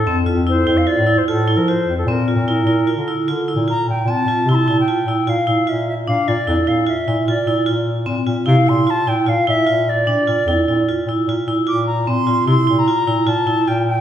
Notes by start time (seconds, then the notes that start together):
Already playing: A4
0.06 F2 C4
0.26 F4
0.36 F2
0.47 E4 C5
0.67 F2 E4
0.77 F5
0.87 F4 D5
0.97 A2
1.07 E4
1.18 C5
1.27 A2 F4 A4
1.48 E4
1.57 F3 A#4
1.68 F4 C5
1.87 F2
1.98 A4
2.05 A#2 C4
2.10 A#4
2.28 F4
2.35 A#2
2.48 E4
2.65 A#2 E4
2.87 F4
2.95 D3
3.08 E4
3.26 D3 F4
3.48 E4
3.56 A#2
3.68 F4 A#5
3.86 A#2 G5
4.05 A#2 C4
4.10 A5
4.25 A#2 F4
4.45 C3 E4
4.51 C6
4.55 A5
4.67 A#2 E4
4.80 G5
4.88 F4
5.06 A#2 E4
5.27 A#2 F4 F5
5.47 A#2 E4
5.67 A#2 F4 E5
5.89 E5
6.07 A#2 D4 F5
6.28 A#2 F4 D5
6.47 F2 E4
6.67 A#2 E4 F5
6.86 F4 E5
7.07 A#2 E4
7.27 A#2 F4 D5
7.46 A#2 E4
7.66 A#2 F4
8.06 A#2 C4
8.27 A#2 F4
8.46 C3 E4 F5
8.67 A#2 E4 C6
8.87 F4 A5
9.07 A#2 E4 G5
9.26 A#2 F4 F5
9.47 A#2 E4 E5
9.67 A#2 F4
9.89 D5
10.07 A#2 D4
10.28 A#2 F4
10.46 F2 E4
10.67 A#2 E4
10.89 F4
11.06 A#2 E4
11.27 A#2 F4
11.47 A#2 E4
11.67 A#2 F4 D6
11.87 A#5
12.07 A#2 C4 C6
12.27 A#2 F4
12.46 C3 E4 C6
12.67 A#2 E4
12.79 A#5
12.88 F4
13.07 A#2 E4
13.26 A#2 F4 A5
13.46 A#2 E4
13.67 A#2 F4 G5
13.87 G5